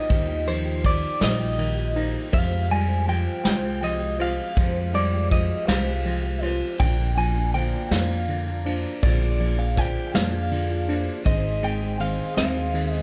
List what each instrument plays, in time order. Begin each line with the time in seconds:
Already playing: upright piano G3 D#4 F4 A#4, synth pluck G3 D#4, tonewheel organ D#4 F4 G5, clean electric guitar D#5
0.09 upright piano D#2 D#3 G3 D#4 F4 A#4, upright bass D#2, steel-string acoustic guitar D#3 F3 A#3 D#4 G4, synth pluck D#3, kick, ride, shaker
0.26 steel-string acoustic guitar A#3 D#4 G4
0.46 synth pluck F3, upright piano G3 D#4 F4 A#4, clean electric guitar C5, ride
0.64 steel-string acoustic guitar A#3 D#4 G4
0.82 synth pluck D#3, steel-string acoustic guitar F3 A#3 D#4 G4, upright piano G3 D#4 F4 A#4, kick, ride, shaker
0.86 clean electric guitar D5
1.20 upright bass A#1, steel-string acoustic guitar D#3 F3 A#3 D#4 G4, synth pluck G3, upright piano D#4 F4 A#4, clean electric guitar D#5, snare, ride
1.38 steel-string acoustic guitar A#3 D#4 G4
1.58 synth pluck D#3, upright piano G3 D#4 F4 A#4, ride, shaker
1.75 steel-string acoustic guitar A#3 D#4 G4
1.93 steel-string acoustic guitar F3 A#3 D#4 G4, upright piano G3 D#4 F4 A#4, synth pluck D#4, ride
2.31 upright piano F1 F2 G#3 F4 G4 C5, steel-string acoustic guitar F2 C3 F3 G#3 C4 G4, upright bass F2, synth pluck F3, tonewheel organ F4 F5, clean electric guitar F5, kick, ride, shaker
2.50 steel-string acoustic guitar F3 G#3 C4 G4
2.70 synth pluck G3, upright piano G3 G#3 F4 C5, clean electric guitar G#5, ride
2.87 steel-string acoustic guitar F3 G#3 C4 G4
3.06 steel-string acoustic guitar F3 G#3 C4 G4, synth pluck F3, upright piano G#3 F4 G4 C5, clean electric guitar G5, ride, shaker
3.44 upright bass C2, steel-string acoustic guitar F2 C3 F3 G#3 C4 G4, upright piano G#3 F4 G4 C5, synth pluck G#3, clean electric guitar G5, snare, ride
3.61 steel-string acoustic guitar F3 G#3 C4 G4
3.81 synth pluck F3, upright piano G#3 F4 G4 C5, clean electric guitar D#5, ride, shaker
3.99 steel-string acoustic guitar F3 G#3 C4 G4
4.18 steel-string acoustic guitar F3 G#3 C4 G4, upright piano G#3 F4 G4 C5, synth pluck F4, ride
4.22 clean electric guitar F5
4.56 upright piano F1 F2 G#3 F4 G4 C5, steel-string acoustic guitar F2 C3 F3 G#3 C4 G4, upright bass F2, synth pluck F3, kick, ride, shaker
4.74 steel-string acoustic guitar F3 G#3 C4 G4, shaker
4.93 synth pluck G3, upright piano G#3 F4 G4 C5, clean electric guitar D5, ride
5.12 steel-string acoustic guitar F3 G#3 C4 G4
5.30 steel-string acoustic guitar F3 G#3 C4 G4, synth pluck F3, upright piano G#3 F4 G4 C5, clean electric guitar D#5, kick, ride, shaker
5.67 upright bass C2, steel-string acoustic guitar F2 C3 F3 G#3 C4 G4, upright piano G#3 F4 G4 C5, synth pluck G#3, clean electric guitar F5, snare, ride
5.86 steel-string acoustic guitar F3 G#3 C4 G4
6.05 synth pluck F3, upright piano G#3 F4 G4 C5, ride, shaker
6.23 steel-string acoustic guitar F3 G#3 C4 G4
6.41 steel-string acoustic guitar F3 G#3 C4 G4, upright piano G#3 F4 G4 C5, synth pluck F4, ride
6.62 shaker
6.79 upright bass A#1, upright piano A#1 A#2 A#3 D4 F4 D5, steel-string acoustic guitar A#2 F3 A#3 D4 F4, synth pluck D3, tonewheel organ F4 D5 A#5, clean electric guitar G5, kick, ride, shaker
6.97 steel-string acoustic guitar A#3 D4 F4
7.17 synth pluck F3, upright piano A#3 D4 F4 D5, clean electric guitar G#5, ride
7.34 steel-string acoustic guitar A#3 D4 F4
7.53 synth pluck D3, steel-string acoustic guitar F3 A#3 D4 F4, upright piano A#3 D4 F4 D5, clean electric guitar G5, ride, shaker
7.90 upright bass F2, steel-string acoustic guitar A#2 F3 A#3 D4 F4, upright piano A#3 D4 F4 D5, synth pluck A#3, clean electric guitar F5, snare, ride
8.09 steel-string acoustic guitar A#3 D4 F4
8.28 synth pluck D3, upright piano A#3 D4 F4 D5, ride, shaker
8.46 steel-string acoustic guitar A#3 D4 F4
8.64 steel-string acoustic guitar F3 A#3 D4 F4, upright piano A#3 D4 F4 D5, synth pluck D4, ride
9.02 upright bass A#1, upright piano A#1 A#2 A#3 D4 F4 D5, steel-string acoustic guitar A#2 F3 A#3 D4 F4, synth pluck D3, tonewheel organ G#4, clean electric guitar D5, kick, ride, shaker
9.21 steel-string acoustic guitar A#3 D4 F4
9.39 synth pluck F3, upright piano A#3 D4 F4 D5, ride
9.57 steel-string acoustic guitar A#3 D4 F4, clean electric guitar F5
9.75 synth pluck D3, steel-string acoustic guitar F3 A#3 D4 F4, upright piano A#3 D4 F4 D5, clean electric guitar G5, kick, ride, shaker
10.13 upright bass F2, steel-string acoustic guitar A#2 F3 A#3 D4 F4, upright piano A#3 D4 F4 D5, synth pluck A#3, clean electric guitar F5, snare, ride
10.32 steel-string acoustic guitar A#3 D4 F4
10.51 synth pluck D3, upright piano A#3 D4 F4 D5, ride, shaker
10.70 steel-string acoustic guitar A#3 D4 F4
10.87 steel-string acoustic guitar F3 A#3 D4 F4, upright piano A#3 D4 F4 D5, synth pluck D4, ride
11.24 upright piano G#1 G#2 C4 D#4 G#4 D#5, upright bass G#1, steel-string acoustic guitar G#2 D#3 G#3 C4 D#4 G#4, synth pluck D#3, tonewheel organ G#4 D#5 C6, clean electric guitar D#5, kick, ride, shaker
11.43 steel-string acoustic guitar G#3 C4 D#4 G#4
11.62 synth pluck G#3, upright piano C4 D#4 G#4 D#5, clean electric guitar G5, ride
11.80 steel-string acoustic guitar G#3 C4 D#4 G#4
11.99 synth pluck D#3, steel-string acoustic guitar G#3 C4 D#4 G#4, upright piano C4 D#4 G#4 D#5, clean electric guitar F5, ride, shaker
12.36 upright bass D#2, steel-string acoustic guitar G#2 D#3 G#3 C4 D#4 G#4, upright piano C4 D#4 G#4 D#5, synth pluck C4, clean electric guitar F5, snare, ride
12.54 steel-string acoustic guitar G#3 C4 D#4 G#4
12.74 synth pluck D#3, upright piano C4 D#4 G#4 D#5, ride, shaker
12.92 steel-string acoustic guitar G#3 C4 D#4 G#4, clean electric guitar D#5